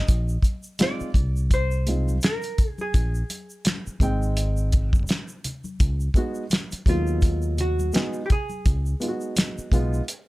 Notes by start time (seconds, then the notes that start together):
Already playing: D#5
0.08 A#1, kick, closed hi-hat, shaker
0.29 shaker
0.43 kick, closed hi-hat, high conga, shaker
0.63 shaker
0.79 G#3 C4 D#4 F4 D5, snare, closed hi-hat, high conga, shaker
1.00 muted fingered electric bass stroke, shaker
1.14 C2, kick, closed hi-hat, low conga, shaker
1.36 shaker
1.51 C5, kick, closed hi-hat, shaker
1.71 shaker
1.87 G#3 C4 D#4 F4, closed hi-hat, low conga, shaker
2.08 high conga, shaker
2.21 A#4, snare, closed hi-hat, shaker
2.42 closed hi-hat, shaker
2.58 kick, closed hi-hat, low conga, shaker
2.69 G#4
2.78 G#4, high conga, shaker
2.94 A#1, kick, closed hi-hat, shaker
3.15 shaker
3.30 closed hi-hat, high conga, shaker
3.50 shaker
3.65 snare, closed hi-hat, high conga, shaker
3.87 muted fingered electric bass stroke, shaker
4.00 G#1 G#3 C4 D#4 G5, kick, closed hi-hat, low conga, shaker
4.22 shaker
4.37 closed hi-hat, shaker
4.57 shaker
4.72 kick, closed hi-hat, low conga, shaker
4.93 kick, high conga, shaker
5.07 snare, closed hi-hat, shaker
5.28 shaker
5.44 closed hi-hat, low conga, shaker
5.64 high conga, shaker
5.80 C#2, kick, closed hi-hat, shaker
6.00 shaker
6.14 G#3 B3 D#4 F#4, kick, closed hi-hat, high conga, shaker
6.35 shaker
6.50 snare, closed hi-hat, high conga, shaker
6.71 muted fingered electric bass stroke, closed hi-hat, shaker
6.86 D#2 F#3 G#3 B3 D#4 F4, kick, closed hi-hat, low conga, shaker
7.07 shaker
7.22 kick, closed hi-hat, shaker
7.42 shaker
7.58 F#4, closed hi-hat, low conga, shaker
7.80 high conga, shaker
7.93 G#3 B3 D#4 G#4, snare, closed hi-hat, shaker
8.13 shaker
8.26 G4
8.30 G#4, kick, closed hi-hat, low conga, shaker
8.50 high conga, shaker
8.66 C#2, kick, closed hi-hat, shaker
8.86 shaker
9.00 G#3 B3 D#4 F4, closed hi-hat, high conga, shaker
9.08 F#4
9.21 shaker
9.36 snare, closed hi-hat, high conga, shaker
9.58 muted fingered electric bass stroke, shaker
9.72 B1 G#3 B3 D#4 F4, kick, closed hi-hat, low conga, shaker
9.94 shaker
10.08 closed hi-hat, shaker